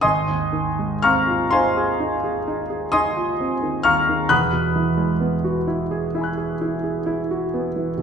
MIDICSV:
0, 0, Header, 1, 2, 480
1, 0, Start_track
1, 0, Tempo, 969305
1, 13, Time_signature, 9, 3, 24, 8
1, 1453, Tempo, 917431
1, 4115, End_track
2, 0, Start_track
2, 0, Title_t, "Grand piano"
2, 0, Program_c, 0, 0
2, 0, Control_c, 0, 64, 127
2, 7, Note_on_c, 0, 87, 101
2, 10, Note_on_c, 0, 80, 74
2, 11, Note_on_c, 0, 84, 78
2, 12, Note_on_c, 0, 75, 80
2, 20, Note_on_c, 0, 32, 64
2, 23, Control_c, 0, 64, 0
2, 121, Control_c, 0, 64, 127
2, 140, Note_on_c, 0, 39, 48
2, 260, Note_on_c, 0, 51, 47
2, 335, Note_off_c, 0, 39, 0
2, 391, Note_on_c, 0, 56, 49
2, 456, Note_off_c, 0, 51, 0
2, 483, Note_off_c, 0, 80, 0
2, 484, Note_off_c, 0, 75, 0
2, 484, Note_off_c, 0, 84, 0
2, 502, Note_off_c, 0, 87, 0
2, 507, Note_on_c, 0, 89, 102
2, 511, Note_on_c, 0, 85, 78
2, 514, Note_on_c, 0, 77, 76
2, 514, Note_on_c, 0, 82, 77
2, 518, Note_on_c, 0, 60, 51
2, 582, Note_off_c, 0, 56, 0
2, 630, Note_on_c, 0, 65, 53
2, 705, Note_off_c, 0, 60, 0
2, 733, Note_off_c, 0, 85, 0
2, 734, Note_off_c, 0, 77, 0
2, 734, Note_off_c, 0, 82, 0
2, 746, Note_on_c, 0, 84, 97
2, 748, Note_off_c, 0, 89, 0
2, 754, Note_on_c, 0, 80, 75
2, 755, Note_on_c, 0, 77, 74
2, 756, Note_on_c, 0, 72, 76
2, 759, Note_on_c, 0, 63, 58
2, 820, Note_off_c, 0, 65, 0
2, 876, Note_on_c, 0, 68, 53
2, 944, Note_off_c, 0, 63, 0
2, 991, Note_on_c, 0, 63, 49
2, 1060, Note_off_c, 0, 68, 0
2, 1109, Note_on_c, 0, 68, 52
2, 1176, Note_off_c, 0, 63, 0
2, 1226, Note_on_c, 0, 63, 54
2, 1293, Note_off_c, 0, 68, 0
2, 1337, Note_on_c, 0, 68, 54
2, 1409, Note_off_c, 0, 63, 0
2, 1436, Note_off_c, 0, 77, 0
2, 1436, Note_off_c, 0, 80, 0
2, 1437, Note_off_c, 0, 72, 0
2, 1441, Note_off_c, 0, 84, 0
2, 1444, Note_on_c, 0, 87, 109
2, 1447, Note_on_c, 0, 80, 78
2, 1448, Note_on_c, 0, 84, 82
2, 1451, Note_on_c, 0, 75, 83
2, 1453, Note_on_c, 0, 63, 54
2, 1526, Note_off_c, 0, 68, 0
2, 1575, Note_on_c, 0, 65, 51
2, 1648, Note_off_c, 0, 63, 0
2, 1699, Note_on_c, 0, 60, 47
2, 1769, Note_off_c, 0, 65, 0
2, 1814, Note_on_c, 0, 51, 46
2, 1891, Note_off_c, 0, 60, 0
2, 1914, Note_off_c, 0, 80, 0
2, 1914, Note_off_c, 0, 84, 0
2, 1916, Note_off_c, 0, 75, 0
2, 1924, Note_on_c, 0, 89, 103
2, 1929, Note_on_c, 0, 77, 73
2, 1929, Note_on_c, 0, 85, 79
2, 1930, Note_on_c, 0, 82, 73
2, 1933, Note_off_c, 0, 87, 0
2, 1936, Note_on_c, 0, 39, 48
2, 2007, Note_off_c, 0, 51, 0
2, 2058, Note_on_c, 0, 51, 45
2, 2126, Note_off_c, 0, 39, 0
2, 2153, Note_off_c, 0, 77, 0
2, 2153, Note_off_c, 0, 82, 0
2, 2153, Note_off_c, 0, 85, 0
2, 2156, Note_off_c, 0, 32, 0
2, 2163, Note_on_c, 0, 90, 96
2, 2166, Note_on_c, 0, 78, 71
2, 2166, Note_on_c, 0, 87, 73
2, 2167, Note_off_c, 0, 89, 0
2, 2167, Note_on_c, 0, 83, 77
2, 2168, Note_on_c, 0, 28, 53
2, 2172, Note_on_c, 0, 40, 60
2, 2175, Note_off_c, 0, 51, 0
2, 2182, Control_c, 0, 64, 0
2, 2262, Control_c, 0, 64, 127
2, 2286, Note_on_c, 0, 47, 42
2, 2406, Note_on_c, 0, 52, 48
2, 2477, Note_off_c, 0, 47, 0
2, 2518, Note_on_c, 0, 56, 49
2, 2597, Note_off_c, 0, 52, 0
2, 2641, Note_on_c, 0, 59, 50
2, 2714, Note_off_c, 0, 56, 0
2, 2766, Note_on_c, 0, 66, 49
2, 2836, Note_off_c, 0, 59, 0
2, 2887, Note_on_c, 0, 64, 52
2, 2961, Note_off_c, 0, 66, 0
2, 3010, Note_on_c, 0, 68, 54
2, 3083, Note_off_c, 0, 64, 0
2, 3134, Note_on_c, 0, 64, 50
2, 3136, Note_on_c, 0, 76, 39
2, 3149, Note_on_c, 0, 80, 37
2, 3161, Note_off_c, 0, 83, 0
2, 3169, Note_on_c, 0, 83, 40
2, 3173, Note_off_c, 0, 90, 0
2, 3181, Note_on_c, 0, 90, 37
2, 3206, Note_off_c, 0, 68, 0
2, 3252, Note_on_c, 0, 68, 50
2, 3329, Note_off_c, 0, 64, 0
2, 3378, Note_on_c, 0, 64, 53
2, 3449, Note_off_c, 0, 68, 0
2, 3495, Note_on_c, 0, 68, 49
2, 3571, Note_off_c, 0, 64, 0
2, 3613, Note_on_c, 0, 64, 58
2, 3688, Note_off_c, 0, 68, 0
2, 3742, Note_on_c, 0, 66, 51
2, 3806, Note_off_c, 0, 64, 0
2, 3863, Note_on_c, 0, 59, 49
2, 3929, Note_off_c, 0, 66, 0
2, 3979, Note_on_c, 0, 52, 46
2, 4049, Note_off_c, 0, 59, 0
2, 4068, Note_off_c, 0, 78, 0
2, 4068, Note_off_c, 0, 87, 0
2, 4091, Note_on_c, 0, 47, 47
2, 4115, Note_off_c, 0, 28, 0
2, 4115, Note_off_c, 0, 40, 0
2, 4115, Note_off_c, 0, 47, 0
2, 4115, Note_off_c, 0, 52, 0
2, 4115, Note_off_c, 0, 76, 0
2, 4115, Note_off_c, 0, 80, 0
2, 4115, Note_off_c, 0, 83, 0
2, 4115, Note_off_c, 0, 90, 0
2, 4115, End_track
0, 0, End_of_file